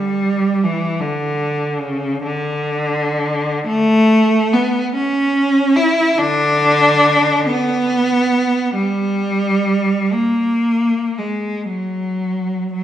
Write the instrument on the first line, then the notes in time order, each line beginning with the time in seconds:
cello
Already playing: G3
0.63 E3
1.00 D3
1.80 C#3
2.23 D3
3.67 A3
4.53 B3
4.95 C#4
5.76 E4
6.18 D3 D4
7.46 B3
8.75 G3
10.13 A#3
11.18 G#3
11.69 F#3
12.73 F#3